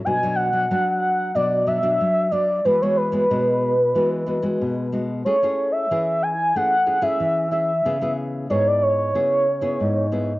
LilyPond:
<<
  \new Staff \with { instrumentName = "Soft synth lead" } { \time 4/4 \key a \major \tempo 4 = 92 gis''8 fis''4 fis''8 d''8 e''4 d''8 | b'16 cis''16 b'2. r8 | cis''8. e''8. gis''8 fis''8. e''8. e''8~ | e''8 r8 cis''16 d''16 cis''16 cis''4.~ cis''16 r8 | }
  \new Staff \with { instrumentName = "Nylon-string guitar" } { \time 4/4 \key a \major << { <fis d' fis'>16 <fis d' fis'>8 <fis d' fis'>16 <fis d' fis'>4 <fis d' fis'>8 <fis d' fis'>16 <fis d' fis'>8. <fis d' fis'>8 | <gis b fis'>16 <gis b fis'>8 <gis b fis'>16 <gis b fis'>8. r16 <gis b fis'>8 <gis b fis'>16 <gis b fis'>8. <gis b fis'>8 | <cis' e' gis'>16 <cis' e' gis'>8. <cis' e' gis'>8. r16 <cis' e' gis'>16 r16 <cis' e' gis'>16 <cis' e' gis'>8. <cis' e' gis'>16 r16 | <b e' gis'>16 <b e' gis'>8. <b e' gis'>4 <b e' gis'>8 r16 <b e' gis'>8. <b e' gis'>16 r16 | } \\ { b,4 fis4 b,4 fis4 | e4 b,4 e4 b,4 | a4 e4 a4 e4 | cis4 gis,4 cis4 gis,4 | } >> }
>>